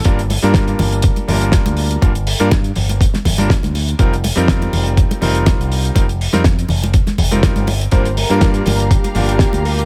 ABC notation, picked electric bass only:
X:1
M:4/4
L:1/16
Q:"Swing 16ths" 1/4=122
K:Gm
V:1 name="Picked electric bass" clef=bass
G,,,2 z G,,2 z G,,,2 z2 G,,,2 z D,,2 z | G,,,2 z G,,2 z G,,,2 z2 G,,,2 z D,,2 z | F,,,2 z F,,2 z F,,,2 z2 F,,,2 z C,,2 z | F,,,2 z F,,2 z F,,,2 z2 F,,,2 z G,,,2 z |
G,,,2 z G,,2 z G,,,2 z2 G,,,2 z D,,2 z |]